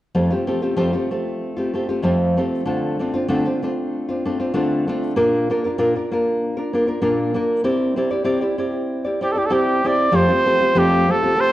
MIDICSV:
0, 0, Header, 1, 3, 480
1, 0, Start_track
1, 0, Key_signature, -1, "major"
1, 0, Tempo, 629591
1, 123, Time_signature, 4, 2, 24, 8
1, 2522, Tempo, 622407
1, 8857, End_track
2, 0, Start_track
2, 0, Title_t, "Trumpet"
2, 0, Program_c, 0, 56
2, 7094, Note_on_c, 0, 67, 46
2, 7159, Note_on_c, 0, 69, 48
2, 7170, Note_off_c, 0, 67, 0
2, 7206, Note_on_c, 0, 67, 49
2, 7218, Note_off_c, 0, 69, 0
2, 7267, Note_on_c, 0, 69, 50
2, 7278, Note_off_c, 0, 67, 0
2, 7321, Note_on_c, 0, 67, 58
2, 7333, Note_off_c, 0, 69, 0
2, 7582, Note_on_c, 0, 74, 60
2, 7593, Note_off_c, 0, 67, 0
2, 7801, Note_on_c, 0, 72, 78
2, 7812, Note_off_c, 0, 74, 0
2, 8288, Note_on_c, 0, 67, 65
2, 8299, Note_off_c, 0, 72, 0
2, 8541, Note_on_c, 0, 69, 67
2, 8552, Note_off_c, 0, 67, 0
2, 8767, Note_on_c, 0, 72, 80
2, 8779, Note_off_c, 0, 69, 0
2, 8857, Note_off_c, 0, 72, 0
2, 8857, End_track
3, 0, Start_track
3, 0, Title_t, "Nylon-string guitar"
3, 0, Program_c, 1, 24
3, 111, Note_on_c, 1, 41, 55
3, 111, Note_on_c, 1, 53, 57
3, 112, Note_on_c, 1, 57, 50
3, 114, Note_on_c, 1, 60, 56
3, 115, Note_on_c, 1, 67, 54
3, 119, Note_on_c, 1, 65, 55
3, 222, Note_off_c, 1, 65, 0
3, 231, Note_on_c, 1, 65, 43
3, 232, Note_off_c, 1, 60, 0
3, 232, Note_off_c, 1, 67, 0
3, 237, Note_off_c, 1, 57, 0
3, 241, Note_on_c, 1, 60, 36
3, 241, Note_on_c, 1, 67, 37
3, 246, Note_on_c, 1, 57, 28
3, 247, Note_off_c, 1, 41, 0
3, 247, Note_off_c, 1, 53, 0
3, 349, Note_off_c, 1, 60, 0
3, 351, Note_off_c, 1, 57, 0
3, 357, Note_off_c, 1, 67, 0
3, 359, Note_off_c, 1, 65, 0
3, 359, Note_on_c, 1, 60, 47
3, 360, Note_on_c, 1, 57, 46
3, 366, Note_on_c, 1, 67, 47
3, 368, Note_on_c, 1, 65, 47
3, 462, Note_off_c, 1, 65, 0
3, 466, Note_off_c, 1, 67, 0
3, 471, Note_off_c, 1, 60, 0
3, 471, Note_on_c, 1, 65, 36
3, 474, Note_off_c, 1, 57, 0
3, 475, Note_on_c, 1, 67, 32
3, 480, Note_on_c, 1, 60, 36
3, 483, Note_on_c, 1, 57, 31
3, 575, Note_off_c, 1, 57, 0
3, 577, Note_off_c, 1, 60, 0
3, 580, Note_off_c, 1, 67, 0
3, 581, Note_off_c, 1, 65, 0
3, 583, Note_on_c, 1, 53, 55
3, 584, Note_on_c, 1, 41, 55
3, 584, Note_on_c, 1, 57, 53
3, 586, Note_on_c, 1, 60, 58
3, 589, Note_on_c, 1, 67, 61
3, 590, Note_on_c, 1, 65, 65
3, 698, Note_off_c, 1, 65, 0
3, 702, Note_off_c, 1, 67, 0
3, 707, Note_on_c, 1, 65, 37
3, 708, Note_off_c, 1, 60, 0
3, 711, Note_on_c, 1, 67, 39
3, 713, Note_off_c, 1, 57, 0
3, 717, Note_on_c, 1, 60, 35
3, 723, Note_off_c, 1, 41, 0
3, 723, Note_off_c, 1, 53, 0
3, 723, Note_on_c, 1, 57, 34
3, 837, Note_off_c, 1, 57, 0
3, 842, Note_off_c, 1, 60, 0
3, 843, Note_off_c, 1, 67, 0
3, 846, Note_on_c, 1, 57, 40
3, 850, Note_off_c, 1, 65, 0
3, 851, Note_on_c, 1, 60, 36
3, 852, Note_on_c, 1, 67, 39
3, 859, Note_on_c, 1, 65, 36
3, 1185, Note_off_c, 1, 65, 0
3, 1194, Note_off_c, 1, 67, 0
3, 1194, Note_on_c, 1, 65, 40
3, 1196, Note_off_c, 1, 60, 0
3, 1199, Note_off_c, 1, 57, 0
3, 1203, Note_on_c, 1, 67, 35
3, 1205, Note_on_c, 1, 60, 36
3, 1209, Note_on_c, 1, 57, 30
3, 1314, Note_off_c, 1, 57, 0
3, 1323, Note_on_c, 1, 57, 35
3, 1324, Note_off_c, 1, 60, 0
3, 1324, Note_off_c, 1, 67, 0
3, 1329, Note_off_c, 1, 65, 0
3, 1333, Note_on_c, 1, 60, 40
3, 1333, Note_on_c, 1, 67, 40
3, 1338, Note_on_c, 1, 65, 43
3, 1429, Note_off_c, 1, 65, 0
3, 1430, Note_off_c, 1, 67, 0
3, 1437, Note_off_c, 1, 60, 0
3, 1439, Note_on_c, 1, 65, 31
3, 1439, Note_on_c, 1, 67, 34
3, 1441, Note_off_c, 1, 57, 0
3, 1446, Note_on_c, 1, 60, 31
3, 1450, Note_on_c, 1, 57, 31
3, 1541, Note_off_c, 1, 57, 0
3, 1541, Note_off_c, 1, 60, 0
3, 1543, Note_off_c, 1, 67, 0
3, 1544, Note_on_c, 1, 41, 54
3, 1546, Note_off_c, 1, 65, 0
3, 1548, Note_on_c, 1, 53, 51
3, 1550, Note_on_c, 1, 57, 48
3, 1550, Note_on_c, 1, 60, 54
3, 1552, Note_on_c, 1, 67, 56
3, 1555, Note_on_c, 1, 65, 60
3, 1800, Note_off_c, 1, 57, 0
3, 1805, Note_off_c, 1, 60, 0
3, 1809, Note_off_c, 1, 67, 0
3, 1809, Note_on_c, 1, 57, 40
3, 1812, Note_off_c, 1, 65, 0
3, 1813, Note_off_c, 1, 41, 0
3, 1814, Note_on_c, 1, 60, 49
3, 1815, Note_off_c, 1, 53, 0
3, 1818, Note_on_c, 1, 67, 50
3, 1821, Note_on_c, 1, 65, 52
3, 2017, Note_off_c, 1, 57, 0
3, 2025, Note_off_c, 1, 60, 0
3, 2025, Note_on_c, 1, 50, 52
3, 2026, Note_off_c, 1, 65, 0
3, 2026, Note_on_c, 1, 57, 56
3, 2028, Note_on_c, 1, 62, 50
3, 2033, Note_off_c, 1, 67, 0
3, 2036, Note_on_c, 1, 60, 52
3, 2036, Note_on_c, 1, 65, 64
3, 2274, Note_off_c, 1, 57, 0
3, 2279, Note_off_c, 1, 62, 0
3, 2283, Note_off_c, 1, 60, 0
3, 2283, Note_on_c, 1, 57, 45
3, 2286, Note_off_c, 1, 65, 0
3, 2288, Note_on_c, 1, 62, 47
3, 2293, Note_off_c, 1, 50, 0
3, 2293, Note_on_c, 1, 60, 47
3, 2295, Note_on_c, 1, 65, 49
3, 2384, Note_off_c, 1, 65, 0
3, 2393, Note_on_c, 1, 65, 47
3, 2394, Note_off_c, 1, 60, 0
3, 2400, Note_off_c, 1, 62, 0
3, 2402, Note_off_c, 1, 57, 0
3, 2403, Note_on_c, 1, 60, 41
3, 2409, Note_on_c, 1, 62, 34
3, 2500, Note_off_c, 1, 62, 0
3, 2501, Note_off_c, 1, 60, 0
3, 2505, Note_off_c, 1, 65, 0
3, 2506, Note_on_c, 1, 50, 63
3, 2506, Note_on_c, 1, 57, 60
3, 2509, Note_on_c, 1, 62, 67
3, 2510, Note_on_c, 1, 60, 64
3, 2515, Note_on_c, 1, 65, 63
3, 2628, Note_off_c, 1, 65, 0
3, 2633, Note_off_c, 1, 60, 0
3, 2637, Note_on_c, 1, 65, 35
3, 2638, Note_off_c, 1, 62, 0
3, 2642, Note_on_c, 1, 60, 34
3, 2644, Note_off_c, 1, 50, 0
3, 2644, Note_off_c, 1, 57, 0
3, 2647, Note_on_c, 1, 62, 30
3, 2763, Note_off_c, 1, 62, 0
3, 2765, Note_off_c, 1, 60, 0
3, 2768, Note_on_c, 1, 57, 41
3, 2770, Note_off_c, 1, 65, 0
3, 2773, Note_on_c, 1, 62, 38
3, 2774, Note_on_c, 1, 60, 46
3, 2779, Note_on_c, 1, 65, 46
3, 3113, Note_off_c, 1, 65, 0
3, 3122, Note_off_c, 1, 60, 0
3, 3122, Note_on_c, 1, 65, 37
3, 3125, Note_off_c, 1, 57, 0
3, 3127, Note_off_c, 1, 62, 0
3, 3132, Note_on_c, 1, 60, 33
3, 3138, Note_on_c, 1, 62, 33
3, 3243, Note_off_c, 1, 62, 0
3, 3250, Note_off_c, 1, 60, 0
3, 3251, Note_off_c, 1, 65, 0
3, 3252, Note_on_c, 1, 57, 45
3, 3253, Note_on_c, 1, 62, 50
3, 3259, Note_on_c, 1, 60, 44
3, 3260, Note_on_c, 1, 65, 41
3, 3351, Note_off_c, 1, 65, 0
3, 3356, Note_off_c, 1, 60, 0
3, 3359, Note_off_c, 1, 62, 0
3, 3361, Note_on_c, 1, 65, 41
3, 3365, Note_on_c, 1, 60, 38
3, 3367, Note_off_c, 1, 57, 0
3, 3368, Note_on_c, 1, 62, 28
3, 3466, Note_off_c, 1, 62, 0
3, 3468, Note_off_c, 1, 60, 0
3, 3470, Note_on_c, 1, 50, 56
3, 3471, Note_on_c, 1, 57, 53
3, 3473, Note_off_c, 1, 65, 0
3, 3475, Note_on_c, 1, 62, 61
3, 3477, Note_on_c, 1, 60, 61
3, 3482, Note_on_c, 1, 65, 57
3, 3721, Note_off_c, 1, 57, 0
3, 3724, Note_off_c, 1, 62, 0
3, 3730, Note_off_c, 1, 60, 0
3, 3730, Note_on_c, 1, 57, 48
3, 3733, Note_off_c, 1, 50, 0
3, 3733, Note_on_c, 1, 62, 52
3, 3734, Note_off_c, 1, 65, 0
3, 3740, Note_on_c, 1, 60, 48
3, 3743, Note_on_c, 1, 65, 56
3, 3947, Note_off_c, 1, 57, 0
3, 3948, Note_off_c, 1, 62, 0
3, 3948, Note_off_c, 1, 65, 0
3, 3950, Note_on_c, 1, 58, 68
3, 3952, Note_on_c, 1, 46, 55
3, 3954, Note_off_c, 1, 60, 0
3, 3957, Note_on_c, 1, 62, 65
3, 3957, Note_on_c, 1, 65, 74
3, 3958, Note_on_c, 1, 70, 63
3, 4201, Note_off_c, 1, 58, 0
3, 4207, Note_off_c, 1, 62, 0
3, 4209, Note_off_c, 1, 65, 0
3, 4211, Note_off_c, 1, 46, 0
3, 4211, Note_on_c, 1, 58, 53
3, 4214, Note_off_c, 1, 70, 0
3, 4216, Note_on_c, 1, 62, 47
3, 4218, Note_on_c, 1, 65, 51
3, 4222, Note_on_c, 1, 70, 52
3, 4312, Note_off_c, 1, 70, 0
3, 4320, Note_off_c, 1, 65, 0
3, 4321, Note_off_c, 1, 58, 0
3, 4321, Note_on_c, 1, 70, 41
3, 4324, Note_off_c, 1, 62, 0
3, 4330, Note_on_c, 1, 65, 40
3, 4337, Note_on_c, 1, 62, 35
3, 4424, Note_off_c, 1, 65, 0
3, 4426, Note_off_c, 1, 62, 0
3, 4429, Note_off_c, 1, 70, 0
3, 4429, Note_on_c, 1, 46, 63
3, 4430, Note_on_c, 1, 58, 59
3, 4433, Note_on_c, 1, 65, 74
3, 4436, Note_on_c, 1, 62, 58
3, 4438, Note_on_c, 1, 70, 67
3, 4552, Note_off_c, 1, 70, 0
3, 4558, Note_off_c, 1, 65, 0
3, 4560, Note_off_c, 1, 46, 0
3, 4560, Note_off_c, 1, 58, 0
3, 4561, Note_off_c, 1, 62, 0
3, 4561, Note_on_c, 1, 70, 34
3, 4568, Note_on_c, 1, 65, 36
3, 4570, Note_on_c, 1, 62, 31
3, 4680, Note_off_c, 1, 62, 0
3, 4683, Note_off_c, 1, 65, 0
3, 4686, Note_on_c, 1, 58, 44
3, 4689, Note_on_c, 1, 62, 39
3, 4690, Note_off_c, 1, 70, 0
3, 4692, Note_on_c, 1, 65, 49
3, 4700, Note_on_c, 1, 70, 43
3, 5026, Note_off_c, 1, 70, 0
3, 5031, Note_off_c, 1, 65, 0
3, 5035, Note_on_c, 1, 70, 39
3, 5036, Note_off_c, 1, 58, 0
3, 5038, Note_off_c, 1, 62, 0
3, 5041, Note_on_c, 1, 65, 34
3, 5047, Note_on_c, 1, 62, 35
3, 5162, Note_off_c, 1, 62, 0
3, 5163, Note_on_c, 1, 58, 39
3, 5164, Note_off_c, 1, 65, 0
3, 5166, Note_off_c, 1, 70, 0
3, 5171, Note_on_c, 1, 62, 39
3, 5173, Note_on_c, 1, 65, 49
3, 5176, Note_on_c, 1, 70, 47
3, 5260, Note_off_c, 1, 70, 0
3, 5268, Note_off_c, 1, 65, 0
3, 5269, Note_on_c, 1, 70, 39
3, 5273, Note_off_c, 1, 62, 0
3, 5274, Note_off_c, 1, 58, 0
3, 5278, Note_on_c, 1, 65, 33
3, 5282, Note_on_c, 1, 62, 38
3, 5378, Note_off_c, 1, 62, 0
3, 5378, Note_off_c, 1, 65, 0
3, 5382, Note_off_c, 1, 70, 0
3, 5383, Note_on_c, 1, 46, 59
3, 5383, Note_on_c, 1, 58, 55
3, 5387, Note_on_c, 1, 62, 64
3, 5387, Note_on_c, 1, 65, 62
3, 5390, Note_on_c, 1, 70, 56
3, 5625, Note_off_c, 1, 58, 0
3, 5630, Note_off_c, 1, 62, 0
3, 5634, Note_on_c, 1, 58, 56
3, 5637, Note_off_c, 1, 65, 0
3, 5639, Note_off_c, 1, 70, 0
3, 5639, Note_on_c, 1, 62, 49
3, 5642, Note_off_c, 1, 46, 0
3, 5647, Note_on_c, 1, 65, 50
3, 5648, Note_on_c, 1, 70, 53
3, 5858, Note_off_c, 1, 58, 0
3, 5861, Note_off_c, 1, 62, 0
3, 5863, Note_off_c, 1, 65, 0
3, 5864, Note_on_c, 1, 60, 57
3, 5865, Note_off_c, 1, 70, 0
3, 5865, Note_on_c, 1, 64, 57
3, 5866, Note_on_c, 1, 67, 55
3, 5869, Note_on_c, 1, 74, 66
3, 6102, Note_off_c, 1, 60, 0
3, 6110, Note_off_c, 1, 64, 0
3, 6111, Note_off_c, 1, 67, 0
3, 6111, Note_on_c, 1, 60, 47
3, 6115, Note_off_c, 1, 74, 0
3, 6119, Note_on_c, 1, 64, 56
3, 6120, Note_on_c, 1, 67, 47
3, 6124, Note_on_c, 1, 74, 58
3, 6213, Note_off_c, 1, 74, 0
3, 6219, Note_off_c, 1, 67, 0
3, 6222, Note_on_c, 1, 74, 42
3, 6227, Note_off_c, 1, 60, 0
3, 6227, Note_off_c, 1, 64, 0
3, 6229, Note_on_c, 1, 67, 33
3, 6236, Note_on_c, 1, 64, 34
3, 6321, Note_off_c, 1, 64, 0
3, 6324, Note_off_c, 1, 67, 0
3, 6326, Note_off_c, 1, 74, 0
3, 6328, Note_on_c, 1, 60, 59
3, 6331, Note_on_c, 1, 64, 58
3, 6333, Note_on_c, 1, 67, 63
3, 6335, Note_on_c, 1, 74, 66
3, 6447, Note_off_c, 1, 74, 0
3, 6454, Note_off_c, 1, 67, 0
3, 6457, Note_on_c, 1, 74, 38
3, 6459, Note_off_c, 1, 64, 0
3, 6463, Note_on_c, 1, 67, 29
3, 6465, Note_off_c, 1, 60, 0
3, 6469, Note_on_c, 1, 64, 32
3, 6579, Note_off_c, 1, 64, 0
3, 6585, Note_off_c, 1, 67, 0
3, 6587, Note_on_c, 1, 60, 36
3, 6588, Note_off_c, 1, 74, 0
3, 6589, Note_on_c, 1, 64, 41
3, 6594, Note_on_c, 1, 67, 40
3, 6597, Note_on_c, 1, 74, 40
3, 6937, Note_off_c, 1, 74, 0
3, 6947, Note_off_c, 1, 67, 0
3, 6947, Note_on_c, 1, 74, 37
3, 6948, Note_off_c, 1, 60, 0
3, 6949, Note_off_c, 1, 64, 0
3, 6957, Note_on_c, 1, 67, 32
3, 6959, Note_on_c, 1, 64, 29
3, 7072, Note_off_c, 1, 64, 0
3, 7074, Note_on_c, 1, 60, 42
3, 7076, Note_off_c, 1, 67, 0
3, 7078, Note_off_c, 1, 74, 0
3, 7082, Note_on_c, 1, 64, 39
3, 7086, Note_on_c, 1, 67, 51
3, 7088, Note_on_c, 1, 74, 48
3, 7177, Note_off_c, 1, 74, 0
3, 7186, Note_off_c, 1, 67, 0
3, 7186, Note_on_c, 1, 74, 36
3, 7192, Note_off_c, 1, 64, 0
3, 7194, Note_off_c, 1, 60, 0
3, 7195, Note_on_c, 1, 67, 36
3, 7201, Note_on_c, 1, 64, 30
3, 7290, Note_off_c, 1, 64, 0
3, 7295, Note_off_c, 1, 67, 0
3, 7299, Note_off_c, 1, 74, 0
3, 7299, Note_on_c, 1, 64, 65
3, 7300, Note_on_c, 1, 60, 58
3, 7304, Note_on_c, 1, 67, 58
3, 7308, Note_on_c, 1, 74, 56
3, 7552, Note_off_c, 1, 60, 0
3, 7557, Note_off_c, 1, 64, 0
3, 7561, Note_on_c, 1, 60, 51
3, 7562, Note_off_c, 1, 67, 0
3, 7566, Note_off_c, 1, 74, 0
3, 7566, Note_on_c, 1, 64, 49
3, 7571, Note_on_c, 1, 67, 44
3, 7575, Note_on_c, 1, 74, 47
3, 7768, Note_off_c, 1, 60, 0
3, 7771, Note_off_c, 1, 67, 0
3, 7773, Note_on_c, 1, 41, 59
3, 7774, Note_off_c, 1, 64, 0
3, 7777, Note_on_c, 1, 53, 65
3, 7777, Note_on_c, 1, 57, 60
3, 7777, Note_on_c, 1, 60, 61
3, 7780, Note_on_c, 1, 67, 61
3, 7783, Note_off_c, 1, 74, 0
3, 7786, Note_on_c, 1, 65, 56
3, 7894, Note_off_c, 1, 65, 0
3, 7902, Note_off_c, 1, 67, 0
3, 7903, Note_on_c, 1, 65, 43
3, 7904, Note_off_c, 1, 60, 0
3, 7910, Note_off_c, 1, 57, 0
3, 7912, Note_on_c, 1, 67, 42
3, 7913, Note_on_c, 1, 60, 34
3, 7915, Note_off_c, 1, 41, 0
3, 7918, Note_off_c, 1, 53, 0
3, 7919, Note_on_c, 1, 57, 32
3, 8027, Note_off_c, 1, 57, 0
3, 8033, Note_off_c, 1, 60, 0
3, 8034, Note_off_c, 1, 67, 0
3, 8037, Note_on_c, 1, 57, 49
3, 8040, Note_off_c, 1, 65, 0
3, 8042, Note_on_c, 1, 60, 57
3, 8044, Note_on_c, 1, 67, 50
3, 8049, Note_on_c, 1, 65, 58
3, 8140, Note_off_c, 1, 65, 0
3, 8142, Note_off_c, 1, 67, 0
3, 8149, Note_on_c, 1, 65, 40
3, 8150, Note_off_c, 1, 60, 0
3, 8151, Note_on_c, 1, 67, 36
3, 8153, Note_off_c, 1, 57, 0
3, 8159, Note_on_c, 1, 60, 38
3, 8162, Note_on_c, 1, 57, 39
3, 8253, Note_off_c, 1, 57, 0
3, 8256, Note_off_c, 1, 60, 0
3, 8258, Note_on_c, 1, 41, 56
3, 8259, Note_off_c, 1, 67, 0
3, 8261, Note_off_c, 1, 65, 0
3, 8262, Note_on_c, 1, 57, 57
3, 8263, Note_on_c, 1, 53, 62
3, 8265, Note_on_c, 1, 60, 63
3, 8268, Note_on_c, 1, 67, 68
3, 8270, Note_on_c, 1, 65, 68
3, 8512, Note_off_c, 1, 57, 0
3, 8516, Note_off_c, 1, 60, 0
3, 8521, Note_off_c, 1, 67, 0
3, 8521, Note_on_c, 1, 57, 37
3, 8525, Note_on_c, 1, 60, 38
3, 8526, Note_off_c, 1, 65, 0
3, 8529, Note_off_c, 1, 41, 0
3, 8530, Note_on_c, 1, 67, 41
3, 8531, Note_off_c, 1, 53, 0
3, 8535, Note_on_c, 1, 65, 37
3, 8620, Note_off_c, 1, 65, 0
3, 8629, Note_off_c, 1, 67, 0
3, 8629, Note_on_c, 1, 65, 49
3, 8630, Note_off_c, 1, 60, 0
3, 8635, Note_off_c, 1, 57, 0
3, 8638, Note_on_c, 1, 67, 45
3, 8640, Note_on_c, 1, 60, 37
3, 8644, Note_on_c, 1, 57, 37
3, 8724, Note_off_c, 1, 57, 0
3, 8730, Note_off_c, 1, 60, 0
3, 8730, Note_off_c, 1, 67, 0
3, 8734, Note_on_c, 1, 57, 42
3, 8735, Note_off_c, 1, 65, 0
3, 8739, Note_on_c, 1, 60, 46
3, 8739, Note_on_c, 1, 67, 59
3, 8744, Note_on_c, 1, 65, 50
3, 8857, Note_off_c, 1, 57, 0
3, 8857, Note_off_c, 1, 60, 0
3, 8857, Note_off_c, 1, 65, 0
3, 8857, Note_off_c, 1, 67, 0
3, 8857, End_track
0, 0, End_of_file